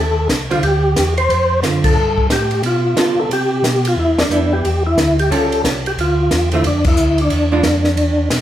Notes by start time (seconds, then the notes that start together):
Already playing: D#2 A4
0.29 C2, snare, hi-hat pedal, ride
0.50 D3 G3 C4 F4, ride
0.62 D2 G4, ride
0.95 E2, snare, hi-hat pedal, ride
1.18 C5, ride
1.29 F2, ride
1.62 F#2 D3 C4 F4, snare, hi-hat pedal, ride
1.84 A4, kick, crash
1.95 G2
2.18 kick
2.29 A2 G4, snare, hi-hat pedal, ride
2.51 ride
2.62 B2, ride
2.66 F4
2.95 C#3 G3 B3 F4 A4, snare, hi-hat pedal, ride
3.17 C#3 A4
3.29 C3 G4, ride
3.62 B2, snare, hi-hat pedal, ride
3.85 F4, ride
3.96 E2 E4
4.17 E2 D4, snare, ride
4.29 F2 G3 B3 E4, hi-hat pedal
4.53 G4
4.62 E2, ride
4.87 E4
4.96 D2, snare, hi-hat pedal, ride
5.19 G4, ride
5.30 C#2 G3 C#4 F4 A4, ride
5.52 ride
5.64 C2, snare, hi-hat pedal, ride
5.86 G4, ride
5.97 D2 F4, ride
6.29 E2, snare, hi-hat pedal, ride
6.51 D3 A3 C4 E4 F4, ride
6.63 F2 D4, ride
6.84 E4, kick, crash
6.96 D2, hi-hat pedal
7.18 D4, ride
7.29 E2, ride
7.52 E3 G#3 D4 F4
7.63 F2, snare, hi-hat pedal, ride
7.84 snare
7.96 E2, ride
8.29 B2, snare, hi-hat pedal, ride